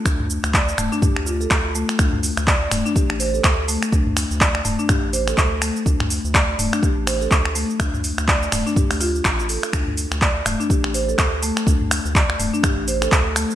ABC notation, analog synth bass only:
X:1
M:4/4
L:1/16
Q:"Swing 16ths" 1/4=124
K:C
V:1 name="Analog synth bass" clef=bass
D,,3 D,,3 D,,, z2 D,,3 D,,3 z | D,,3 D,,3 D,,, z2 A,,,3 D,,3 z | D,,3 D,,3 D,,, z2 A,,,3 D,,3 z | D,,3 D,,3 D,,, z2 A,,,3 D,,3 z |
D,,3 D,,3 D,,, z2 D,,3 A,,,3 z | D,,3 D,,3 D,,, z2 A,,,3 D,,3 z | D,,3 D,,3 D,,, z2 A,,,3 D,,3 z |]